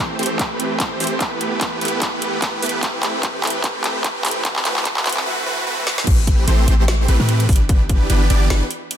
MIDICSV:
0, 0, Header, 1, 4, 480
1, 0, Start_track
1, 0, Tempo, 405405
1, 1428, Time_signature, 4, 2, 24, 8
1, 10620, End_track
2, 0, Start_track
2, 0, Title_t, "Supersaw synth"
2, 0, Program_c, 0, 81
2, 0, Note_on_c, 0, 52, 75
2, 0, Note_on_c, 0, 57, 73
2, 0, Note_on_c, 0, 60, 72
2, 0, Note_on_c, 0, 67, 69
2, 0, Note_on_c, 0, 72, 86
2, 201, Note_off_c, 0, 72, 0
2, 202, Note_off_c, 0, 52, 0
2, 202, Note_off_c, 0, 57, 0
2, 202, Note_off_c, 0, 60, 0
2, 202, Note_off_c, 0, 67, 0
2, 226, Note_on_c, 0, 52, 78
2, 226, Note_on_c, 0, 57, 74
2, 226, Note_on_c, 0, 60, 73
2, 226, Note_on_c, 0, 67, 69
2, 226, Note_on_c, 0, 72, 84
2, 450, Note_off_c, 0, 52, 0
2, 450, Note_off_c, 0, 57, 0
2, 450, Note_off_c, 0, 60, 0
2, 450, Note_off_c, 0, 67, 0
2, 450, Note_off_c, 0, 72, 0
2, 466, Note_on_c, 0, 52, 70
2, 466, Note_on_c, 0, 60, 66
2, 466, Note_on_c, 0, 67, 62
2, 466, Note_on_c, 0, 71, 75
2, 467, Note_on_c, 0, 57, 65
2, 921, Note_off_c, 0, 52, 0
2, 921, Note_off_c, 0, 71, 0
2, 922, Note_off_c, 0, 57, 0
2, 922, Note_off_c, 0, 60, 0
2, 922, Note_off_c, 0, 67, 0
2, 947, Note_on_c, 0, 52, 78
2, 947, Note_on_c, 0, 57, 77
2, 948, Note_on_c, 0, 60, 75
2, 948, Note_on_c, 0, 67, 74
2, 948, Note_on_c, 0, 72, 92
2, 1162, Note_off_c, 0, 52, 0
2, 1162, Note_off_c, 0, 57, 0
2, 1162, Note_off_c, 0, 60, 0
2, 1162, Note_off_c, 0, 67, 0
2, 1163, Note_off_c, 0, 72, 0
2, 1186, Note_on_c, 0, 52, 78
2, 1186, Note_on_c, 0, 57, 72
2, 1186, Note_on_c, 0, 60, 70
2, 1186, Note_on_c, 0, 67, 75
2, 1186, Note_on_c, 0, 72, 92
2, 1410, Note_off_c, 0, 52, 0
2, 1410, Note_off_c, 0, 57, 0
2, 1410, Note_off_c, 0, 60, 0
2, 1410, Note_off_c, 0, 67, 0
2, 1410, Note_off_c, 0, 72, 0
2, 1428, Note_on_c, 0, 52, 72
2, 1428, Note_on_c, 0, 57, 66
2, 1428, Note_on_c, 0, 59, 62
2, 1428, Note_on_c, 0, 67, 65
2, 1428, Note_on_c, 0, 71, 80
2, 1882, Note_off_c, 0, 52, 0
2, 1882, Note_off_c, 0, 57, 0
2, 1882, Note_off_c, 0, 59, 0
2, 1882, Note_off_c, 0, 67, 0
2, 1882, Note_off_c, 0, 71, 0
2, 1908, Note_on_c, 0, 52, 81
2, 1908, Note_on_c, 0, 57, 76
2, 1908, Note_on_c, 0, 59, 73
2, 1908, Note_on_c, 0, 67, 75
2, 1908, Note_on_c, 0, 71, 94
2, 2123, Note_off_c, 0, 52, 0
2, 2123, Note_off_c, 0, 57, 0
2, 2123, Note_off_c, 0, 59, 0
2, 2123, Note_off_c, 0, 67, 0
2, 2123, Note_off_c, 0, 71, 0
2, 2147, Note_on_c, 0, 52, 81
2, 2147, Note_on_c, 0, 57, 78
2, 2147, Note_on_c, 0, 59, 72
2, 2147, Note_on_c, 0, 71, 90
2, 2148, Note_on_c, 0, 67, 73
2, 2370, Note_off_c, 0, 57, 0
2, 2371, Note_off_c, 0, 52, 0
2, 2371, Note_off_c, 0, 59, 0
2, 2371, Note_off_c, 0, 67, 0
2, 2371, Note_off_c, 0, 71, 0
2, 2387, Note_on_c, 0, 57, 66
2, 2388, Note_on_c, 0, 52, 71
2, 2388, Note_on_c, 0, 59, 64
2, 2388, Note_on_c, 0, 67, 69
2, 2388, Note_on_c, 0, 71, 77
2, 2842, Note_off_c, 0, 52, 0
2, 2842, Note_off_c, 0, 57, 0
2, 2842, Note_off_c, 0, 59, 0
2, 2842, Note_off_c, 0, 67, 0
2, 2842, Note_off_c, 0, 71, 0
2, 2868, Note_on_c, 0, 52, 86
2, 2868, Note_on_c, 0, 57, 81
2, 2868, Note_on_c, 0, 59, 78
2, 2868, Note_on_c, 0, 67, 76
2, 2868, Note_on_c, 0, 71, 90
2, 3083, Note_off_c, 0, 52, 0
2, 3083, Note_off_c, 0, 57, 0
2, 3083, Note_off_c, 0, 59, 0
2, 3083, Note_off_c, 0, 67, 0
2, 3083, Note_off_c, 0, 71, 0
2, 3107, Note_on_c, 0, 57, 75
2, 3107, Note_on_c, 0, 59, 78
2, 3107, Note_on_c, 0, 67, 73
2, 3108, Note_on_c, 0, 52, 82
2, 3108, Note_on_c, 0, 71, 98
2, 3331, Note_off_c, 0, 52, 0
2, 3331, Note_off_c, 0, 57, 0
2, 3331, Note_off_c, 0, 59, 0
2, 3331, Note_off_c, 0, 67, 0
2, 3331, Note_off_c, 0, 71, 0
2, 3349, Note_on_c, 0, 52, 74
2, 3349, Note_on_c, 0, 57, 70
2, 3349, Note_on_c, 0, 60, 66
2, 3349, Note_on_c, 0, 67, 68
2, 3349, Note_on_c, 0, 71, 85
2, 3803, Note_off_c, 0, 52, 0
2, 3803, Note_off_c, 0, 57, 0
2, 3803, Note_off_c, 0, 60, 0
2, 3803, Note_off_c, 0, 67, 0
2, 3803, Note_off_c, 0, 71, 0
2, 3828, Note_on_c, 0, 67, 68
2, 3828, Note_on_c, 0, 71, 84
2, 3829, Note_on_c, 0, 52, 78
2, 3829, Note_on_c, 0, 57, 65
2, 3829, Note_on_c, 0, 60, 71
2, 4283, Note_off_c, 0, 52, 0
2, 4283, Note_off_c, 0, 57, 0
2, 4283, Note_off_c, 0, 60, 0
2, 4283, Note_off_c, 0, 67, 0
2, 4283, Note_off_c, 0, 71, 0
2, 4308, Note_on_c, 0, 57, 66
2, 4309, Note_on_c, 0, 52, 78
2, 4309, Note_on_c, 0, 60, 69
2, 4309, Note_on_c, 0, 67, 67
2, 4309, Note_on_c, 0, 71, 81
2, 4763, Note_off_c, 0, 52, 0
2, 4763, Note_off_c, 0, 57, 0
2, 4763, Note_off_c, 0, 60, 0
2, 4763, Note_off_c, 0, 67, 0
2, 4763, Note_off_c, 0, 71, 0
2, 4787, Note_on_c, 0, 60, 71
2, 4788, Note_on_c, 0, 52, 78
2, 4788, Note_on_c, 0, 57, 70
2, 4788, Note_on_c, 0, 67, 72
2, 4788, Note_on_c, 0, 71, 90
2, 5242, Note_off_c, 0, 52, 0
2, 5242, Note_off_c, 0, 57, 0
2, 5242, Note_off_c, 0, 60, 0
2, 5242, Note_off_c, 0, 71, 0
2, 5243, Note_off_c, 0, 67, 0
2, 5267, Note_on_c, 0, 57, 73
2, 5268, Note_on_c, 0, 52, 78
2, 5268, Note_on_c, 0, 60, 68
2, 5268, Note_on_c, 0, 66, 66
2, 5268, Note_on_c, 0, 71, 88
2, 5491, Note_off_c, 0, 52, 0
2, 5491, Note_off_c, 0, 57, 0
2, 5491, Note_off_c, 0, 60, 0
2, 5491, Note_off_c, 0, 66, 0
2, 5491, Note_off_c, 0, 71, 0
2, 5507, Note_on_c, 0, 52, 84
2, 5507, Note_on_c, 0, 57, 76
2, 5507, Note_on_c, 0, 60, 74
2, 5507, Note_on_c, 0, 66, 73
2, 5508, Note_on_c, 0, 71, 92
2, 5731, Note_off_c, 0, 52, 0
2, 5731, Note_off_c, 0, 57, 0
2, 5731, Note_off_c, 0, 60, 0
2, 5731, Note_off_c, 0, 66, 0
2, 5731, Note_off_c, 0, 71, 0
2, 5747, Note_on_c, 0, 52, 79
2, 5747, Note_on_c, 0, 57, 72
2, 5747, Note_on_c, 0, 60, 72
2, 5747, Note_on_c, 0, 66, 68
2, 5747, Note_on_c, 0, 71, 81
2, 5970, Note_off_c, 0, 52, 0
2, 5970, Note_off_c, 0, 57, 0
2, 5970, Note_off_c, 0, 60, 0
2, 5970, Note_off_c, 0, 66, 0
2, 5970, Note_off_c, 0, 71, 0
2, 5987, Note_on_c, 0, 52, 84
2, 5987, Note_on_c, 0, 57, 74
2, 5987, Note_on_c, 0, 60, 74
2, 5987, Note_on_c, 0, 66, 70
2, 5987, Note_on_c, 0, 71, 87
2, 6210, Note_off_c, 0, 52, 0
2, 6210, Note_off_c, 0, 60, 0
2, 6210, Note_off_c, 0, 66, 0
2, 6211, Note_off_c, 0, 57, 0
2, 6211, Note_off_c, 0, 71, 0
2, 6227, Note_on_c, 0, 52, 80
2, 6227, Note_on_c, 0, 57, 71
2, 6227, Note_on_c, 0, 60, 74
2, 6227, Note_on_c, 0, 66, 69
2, 6227, Note_on_c, 0, 71, 91
2, 6450, Note_off_c, 0, 71, 0
2, 6451, Note_off_c, 0, 52, 0
2, 6451, Note_off_c, 0, 57, 0
2, 6451, Note_off_c, 0, 60, 0
2, 6451, Note_off_c, 0, 66, 0
2, 6467, Note_on_c, 0, 57, 73
2, 6467, Note_on_c, 0, 60, 78
2, 6467, Note_on_c, 0, 66, 76
2, 6467, Note_on_c, 0, 71, 90
2, 6468, Note_on_c, 0, 52, 83
2, 6691, Note_off_c, 0, 52, 0
2, 6691, Note_off_c, 0, 57, 0
2, 6691, Note_off_c, 0, 60, 0
2, 6691, Note_off_c, 0, 66, 0
2, 6691, Note_off_c, 0, 71, 0
2, 6708, Note_on_c, 0, 52, 82
2, 6708, Note_on_c, 0, 57, 75
2, 6708, Note_on_c, 0, 60, 74
2, 6708, Note_on_c, 0, 66, 74
2, 6708, Note_on_c, 0, 71, 86
2, 6931, Note_off_c, 0, 52, 0
2, 6931, Note_off_c, 0, 57, 0
2, 6931, Note_off_c, 0, 60, 0
2, 6931, Note_off_c, 0, 66, 0
2, 6931, Note_off_c, 0, 71, 0
2, 6947, Note_on_c, 0, 52, 84
2, 6947, Note_on_c, 0, 57, 73
2, 6947, Note_on_c, 0, 60, 79
2, 6947, Note_on_c, 0, 66, 75
2, 6948, Note_on_c, 0, 71, 93
2, 7171, Note_off_c, 0, 52, 0
2, 7171, Note_off_c, 0, 57, 0
2, 7171, Note_off_c, 0, 60, 0
2, 7171, Note_off_c, 0, 66, 0
2, 7171, Note_off_c, 0, 71, 0
2, 7187, Note_on_c, 0, 52, 77
2, 7187, Note_on_c, 0, 57, 68
2, 7187, Note_on_c, 0, 60, 69
2, 7187, Note_on_c, 0, 67, 72
2, 7187, Note_on_c, 0, 71, 86
2, 7642, Note_off_c, 0, 52, 0
2, 7642, Note_off_c, 0, 57, 0
2, 7642, Note_off_c, 0, 60, 0
2, 7642, Note_off_c, 0, 67, 0
2, 7642, Note_off_c, 0, 71, 0
2, 7667, Note_on_c, 0, 52, 91
2, 7667, Note_on_c, 0, 60, 79
2, 7667, Note_on_c, 0, 67, 80
2, 7668, Note_on_c, 0, 57, 82
2, 7668, Note_on_c, 0, 72, 99
2, 7882, Note_off_c, 0, 52, 0
2, 7882, Note_off_c, 0, 57, 0
2, 7882, Note_off_c, 0, 60, 0
2, 7882, Note_off_c, 0, 67, 0
2, 7882, Note_off_c, 0, 72, 0
2, 7908, Note_on_c, 0, 52, 84
2, 7908, Note_on_c, 0, 57, 84
2, 7908, Note_on_c, 0, 60, 80
2, 7908, Note_on_c, 0, 67, 80
2, 7908, Note_on_c, 0, 72, 96
2, 8362, Note_off_c, 0, 52, 0
2, 8362, Note_off_c, 0, 57, 0
2, 8362, Note_off_c, 0, 60, 0
2, 8362, Note_off_c, 0, 67, 0
2, 8362, Note_off_c, 0, 72, 0
2, 8388, Note_on_c, 0, 52, 96
2, 8388, Note_on_c, 0, 57, 92
2, 8388, Note_on_c, 0, 60, 91
2, 8388, Note_on_c, 0, 71, 111
2, 8389, Note_on_c, 0, 67, 91
2, 8490, Note_off_c, 0, 52, 0
2, 8490, Note_off_c, 0, 57, 0
2, 8490, Note_off_c, 0, 60, 0
2, 8490, Note_off_c, 0, 67, 0
2, 8490, Note_off_c, 0, 71, 0
2, 8521, Note_on_c, 0, 52, 75
2, 8521, Note_on_c, 0, 57, 69
2, 8521, Note_on_c, 0, 60, 71
2, 8522, Note_on_c, 0, 67, 68
2, 8522, Note_on_c, 0, 71, 81
2, 8842, Note_off_c, 0, 52, 0
2, 8842, Note_off_c, 0, 57, 0
2, 8842, Note_off_c, 0, 60, 0
2, 8842, Note_off_c, 0, 67, 0
2, 8843, Note_off_c, 0, 71, 0
2, 8867, Note_on_c, 0, 52, 86
2, 8867, Note_on_c, 0, 59, 74
2, 8867, Note_on_c, 0, 62, 74
2, 8867, Note_on_c, 0, 67, 76
2, 8867, Note_on_c, 0, 71, 88
2, 9562, Note_off_c, 0, 52, 0
2, 9562, Note_off_c, 0, 59, 0
2, 9562, Note_off_c, 0, 62, 0
2, 9562, Note_off_c, 0, 67, 0
2, 9562, Note_off_c, 0, 71, 0
2, 9587, Note_on_c, 0, 52, 85
2, 9587, Note_on_c, 0, 59, 79
2, 9587, Note_on_c, 0, 62, 76
2, 9587, Note_on_c, 0, 67, 73
2, 9587, Note_on_c, 0, 71, 92
2, 9802, Note_off_c, 0, 52, 0
2, 9802, Note_off_c, 0, 59, 0
2, 9802, Note_off_c, 0, 62, 0
2, 9802, Note_off_c, 0, 67, 0
2, 9802, Note_off_c, 0, 71, 0
2, 9828, Note_on_c, 0, 52, 95
2, 9828, Note_on_c, 0, 59, 95
2, 9828, Note_on_c, 0, 62, 89
2, 9828, Note_on_c, 0, 67, 91
2, 9828, Note_on_c, 0, 74, 115
2, 10042, Note_off_c, 0, 59, 0
2, 10042, Note_off_c, 0, 62, 0
2, 10042, Note_off_c, 0, 67, 0
2, 10042, Note_off_c, 0, 74, 0
2, 10043, Note_off_c, 0, 52, 0
2, 10067, Note_on_c, 0, 52, 74
2, 10067, Note_on_c, 0, 59, 66
2, 10067, Note_on_c, 0, 62, 71
2, 10067, Note_on_c, 0, 67, 69
2, 10067, Note_on_c, 0, 71, 85
2, 10221, Note_off_c, 0, 52, 0
2, 10221, Note_off_c, 0, 59, 0
2, 10221, Note_off_c, 0, 62, 0
2, 10221, Note_off_c, 0, 67, 0
2, 10221, Note_off_c, 0, 71, 0
2, 10620, End_track
3, 0, Start_track
3, 0, Title_t, "808-style bass"
3, 0, Program_c, 1, 38
3, 227, Note_on_c, 1, 33, 100
3, 446, Note_off_c, 1, 33, 0
3, 947, Note_on_c, 1, 45, 94
3, 1166, Note_off_c, 1, 45, 0
3, 1187, Note_on_c, 1, 33, 103
3, 1406, Note_off_c, 1, 33, 0
3, 2148, Note_on_c, 1, 31, 94
3, 2367, Note_off_c, 1, 31, 0
3, 2868, Note_on_c, 1, 43, 99
3, 3087, Note_off_c, 1, 43, 0
3, 3109, Note_on_c, 1, 33, 101
3, 3327, Note_off_c, 1, 33, 0
3, 5267, Note_on_c, 1, 38, 105
3, 5486, Note_off_c, 1, 38, 0
3, 5507, Note_on_c, 1, 38, 96
3, 5726, Note_off_c, 1, 38, 0
3, 5986, Note_on_c, 1, 38, 96
3, 6206, Note_off_c, 1, 38, 0
3, 7188, Note_on_c, 1, 33, 100
3, 7647, Note_off_c, 1, 33, 0
3, 7668, Note_on_c, 1, 33, 99
3, 7887, Note_off_c, 1, 33, 0
3, 7908, Note_on_c, 1, 33, 97
3, 8367, Note_off_c, 1, 33, 0
3, 8387, Note_on_c, 1, 33, 104
3, 8495, Note_off_c, 1, 33, 0
3, 8521, Note_on_c, 1, 45, 94
3, 8847, Note_off_c, 1, 45, 0
3, 8868, Note_on_c, 1, 31, 102
3, 9567, Note_off_c, 1, 31, 0
3, 9587, Note_on_c, 1, 31, 100
3, 9806, Note_off_c, 1, 31, 0
3, 9828, Note_on_c, 1, 31, 102
3, 10047, Note_off_c, 1, 31, 0
3, 10067, Note_on_c, 1, 31, 92
3, 10200, Note_off_c, 1, 31, 0
3, 10620, End_track
4, 0, Start_track
4, 0, Title_t, "Drums"
4, 227, Note_on_c, 9, 42, 45
4, 271, Note_off_c, 9, 42, 0
4, 271, Note_on_c, 9, 42, 64
4, 306, Note_off_c, 9, 42, 0
4, 306, Note_on_c, 9, 42, 81
4, 425, Note_off_c, 9, 42, 0
4, 466, Note_on_c, 9, 36, 99
4, 466, Note_on_c, 9, 39, 56
4, 466, Note_on_c, 9, 42, 75
4, 585, Note_off_c, 9, 36, 0
4, 585, Note_off_c, 9, 39, 0
4, 585, Note_off_c, 9, 42, 0
4, 707, Note_on_c, 9, 42, 64
4, 825, Note_off_c, 9, 42, 0
4, 947, Note_on_c, 9, 36, 101
4, 947, Note_on_c, 9, 39, 61
4, 947, Note_on_c, 9, 42, 78
4, 1065, Note_off_c, 9, 36, 0
4, 1065, Note_off_c, 9, 39, 0
4, 1065, Note_off_c, 9, 42, 0
4, 1187, Note_on_c, 9, 46, 95
4, 1231, Note_on_c, 9, 42, 63
4, 1267, Note_off_c, 9, 42, 0
4, 1267, Note_on_c, 9, 42, 79
4, 1305, Note_off_c, 9, 46, 0
4, 1385, Note_off_c, 9, 42, 0
4, 1427, Note_on_c, 9, 36, 103
4, 1427, Note_on_c, 9, 39, 56
4, 1427, Note_on_c, 9, 42, 79
4, 1545, Note_off_c, 9, 36, 0
4, 1545, Note_off_c, 9, 39, 0
4, 1545, Note_off_c, 9, 42, 0
4, 1667, Note_on_c, 9, 42, 69
4, 1786, Note_off_c, 9, 42, 0
4, 1907, Note_on_c, 9, 36, 101
4, 1907, Note_on_c, 9, 39, 61
4, 1907, Note_on_c, 9, 42, 82
4, 2025, Note_off_c, 9, 36, 0
4, 2026, Note_off_c, 9, 39, 0
4, 2026, Note_off_c, 9, 42, 0
4, 2148, Note_on_c, 9, 42, 50
4, 2192, Note_off_c, 9, 42, 0
4, 2192, Note_on_c, 9, 42, 65
4, 2228, Note_off_c, 9, 42, 0
4, 2228, Note_on_c, 9, 42, 81
4, 2346, Note_off_c, 9, 42, 0
4, 2387, Note_on_c, 9, 36, 104
4, 2388, Note_on_c, 9, 39, 67
4, 2388, Note_on_c, 9, 42, 83
4, 2506, Note_off_c, 9, 36, 0
4, 2506, Note_off_c, 9, 39, 0
4, 2506, Note_off_c, 9, 42, 0
4, 2628, Note_on_c, 9, 42, 68
4, 2746, Note_off_c, 9, 42, 0
4, 2867, Note_on_c, 9, 36, 99
4, 2868, Note_on_c, 9, 39, 72
4, 2868, Note_on_c, 9, 42, 84
4, 2986, Note_off_c, 9, 36, 0
4, 2986, Note_off_c, 9, 39, 0
4, 2986, Note_off_c, 9, 42, 0
4, 3108, Note_on_c, 9, 46, 98
4, 3152, Note_on_c, 9, 42, 66
4, 3187, Note_off_c, 9, 42, 0
4, 3187, Note_on_c, 9, 42, 83
4, 3226, Note_off_c, 9, 46, 0
4, 3306, Note_off_c, 9, 42, 0
4, 3347, Note_on_c, 9, 36, 99
4, 3348, Note_on_c, 9, 39, 73
4, 3348, Note_on_c, 9, 42, 84
4, 3466, Note_off_c, 9, 36, 0
4, 3466, Note_off_c, 9, 39, 0
4, 3466, Note_off_c, 9, 42, 0
4, 3588, Note_on_c, 9, 39, 78
4, 3588, Note_on_c, 9, 42, 70
4, 3706, Note_off_c, 9, 39, 0
4, 3706, Note_off_c, 9, 42, 0
4, 3827, Note_on_c, 9, 36, 95
4, 3828, Note_on_c, 9, 39, 78
4, 3828, Note_on_c, 9, 42, 86
4, 3946, Note_off_c, 9, 36, 0
4, 3946, Note_off_c, 9, 39, 0
4, 3946, Note_off_c, 9, 42, 0
4, 4068, Note_on_c, 9, 39, 83
4, 4068, Note_on_c, 9, 42, 50
4, 4113, Note_off_c, 9, 42, 0
4, 4113, Note_on_c, 9, 42, 72
4, 4148, Note_off_c, 9, 42, 0
4, 4148, Note_on_c, 9, 42, 84
4, 4186, Note_off_c, 9, 39, 0
4, 4266, Note_off_c, 9, 42, 0
4, 4307, Note_on_c, 9, 36, 106
4, 4308, Note_on_c, 9, 39, 91
4, 4308, Note_on_c, 9, 42, 86
4, 4426, Note_off_c, 9, 36, 0
4, 4426, Note_off_c, 9, 39, 0
4, 4426, Note_off_c, 9, 42, 0
4, 4548, Note_on_c, 9, 39, 83
4, 4548, Note_on_c, 9, 42, 68
4, 4666, Note_off_c, 9, 39, 0
4, 4666, Note_off_c, 9, 42, 0
4, 4787, Note_on_c, 9, 36, 102
4, 4788, Note_on_c, 9, 39, 92
4, 4788, Note_on_c, 9, 42, 89
4, 4906, Note_off_c, 9, 36, 0
4, 4906, Note_off_c, 9, 39, 0
4, 4906, Note_off_c, 9, 42, 0
4, 5028, Note_on_c, 9, 39, 91
4, 5028, Note_on_c, 9, 46, 106
4, 5072, Note_on_c, 9, 42, 68
4, 5108, Note_off_c, 9, 42, 0
4, 5108, Note_on_c, 9, 42, 89
4, 5146, Note_off_c, 9, 39, 0
4, 5146, Note_off_c, 9, 46, 0
4, 5226, Note_off_c, 9, 42, 0
4, 5267, Note_on_c, 9, 36, 103
4, 5268, Note_on_c, 9, 39, 93
4, 5268, Note_on_c, 9, 42, 80
4, 5386, Note_off_c, 9, 36, 0
4, 5386, Note_off_c, 9, 39, 0
4, 5386, Note_off_c, 9, 42, 0
4, 5401, Note_on_c, 9, 39, 86
4, 5508, Note_off_c, 9, 39, 0
4, 5508, Note_on_c, 9, 39, 95
4, 5508, Note_on_c, 9, 42, 71
4, 5626, Note_off_c, 9, 39, 0
4, 5626, Note_off_c, 9, 42, 0
4, 5642, Note_on_c, 9, 39, 80
4, 5747, Note_off_c, 9, 39, 0
4, 5747, Note_on_c, 9, 36, 98
4, 5747, Note_on_c, 9, 39, 96
4, 5747, Note_on_c, 9, 42, 84
4, 5865, Note_off_c, 9, 36, 0
4, 5866, Note_off_c, 9, 39, 0
4, 5866, Note_off_c, 9, 42, 0
4, 5881, Note_on_c, 9, 39, 91
4, 5987, Note_off_c, 9, 39, 0
4, 5987, Note_on_c, 9, 39, 105
4, 5987, Note_on_c, 9, 42, 51
4, 6032, Note_off_c, 9, 42, 0
4, 6032, Note_on_c, 9, 42, 71
4, 6068, Note_off_c, 9, 42, 0
4, 6068, Note_on_c, 9, 42, 88
4, 6106, Note_off_c, 9, 39, 0
4, 6121, Note_on_c, 9, 39, 83
4, 6187, Note_off_c, 9, 42, 0
4, 6239, Note_off_c, 9, 39, 0
4, 6948, Note_on_c, 9, 38, 64
4, 7066, Note_off_c, 9, 38, 0
4, 7081, Note_on_c, 9, 38, 74
4, 7187, Note_on_c, 9, 36, 121
4, 7188, Note_on_c, 9, 42, 83
4, 7188, Note_on_c, 9, 49, 100
4, 7200, Note_off_c, 9, 38, 0
4, 7306, Note_off_c, 9, 36, 0
4, 7306, Note_off_c, 9, 42, 0
4, 7306, Note_off_c, 9, 49, 0
4, 7427, Note_on_c, 9, 36, 62
4, 7428, Note_on_c, 9, 42, 71
4, 7546, Note_off_c, 9, 36, 0
4, 7546, Note_off_c, 9, 42, 0
4, 7668, Note_on_c, 9, 42, 81
4, 7786, Note_off_c, 9, 42, 0
4, 7907, Note_on_c, 9, 42, 71
4, 8026, Note_off_c, 9, 42, 0
4, 8148, Note_on_c, 9, 38, 127
4, 8148, Note_on_c, 9, 42, 88
4, 8266, Note_off_c, 9, 38, 0
4, 8266, Note_off_c, 9, 42, 0
4, 8388, Note_on_c, 9, 42, 70
4, 8506, Note_off_c, 9, 42, 0
4, 8627, Note_on_c, 9, 42, 87
4, 8746, Note_off_c, 9, 42, 0
4, 8761, Note_on_c, 9, 42, 63
4, 8867, Note_on_c, 9, 36, 113
4, 8867, Note_on_c, 9, 46, 91
4, 8879, Note_off_c, 9, 42, 0
4, 8912, Note_on_c, 9, 42, 69
4, 8947, Note_off_c, 9, 42, 0
4, 8947, Note_on_c, 9, 42, 88
4, 8985, Note_off_c, 9, 46, 0
4, 8986, Note_off_c, 9, 36, 0
4, 9066, Note_off_c, 9, 42, 0
4, 9107, Note_on_c, 9, 36, 120
4, 9107, Note_on_c, 9, 42, 78
4, 9226, Note_off_c, 9, 36, 0
4, 9226, Note_off_c, 9, 42, 0
4, 9347, Note_on_c, 9, 36, 65
4, 9347, Note_on_c, 9, 42, 69
4, 9466, Note_off_c, 9, 36, 0
4, 9466, Note_off_c, 9, 42, 0
4, 9587, Note_on_c, 9, 42, 80
4, 9705, Note_off_c, 9, 42, 0
4, 9828, Note_on_c, 9, 42, 69
4, 9946, Note_off_c, 9, 42, 0
4, 10067, Note_on_c, 9, 38, 127
4, 10067, Note_on_c, 9, 42, 86
4, 10186, Note_off_c, 9, 38, 0
4, 10186, Note_off_c, 9, 42, 0
4, 10307, Note_on_c, 9, 42, 70
4, 10425, Note_off_c, 9, 42, 0
4, 10547, Note_on_c, 9, 42, 88
4, 10620, Note_off_c, 9, 42, 0
4, 10620, End_track
0, 0, End_of_file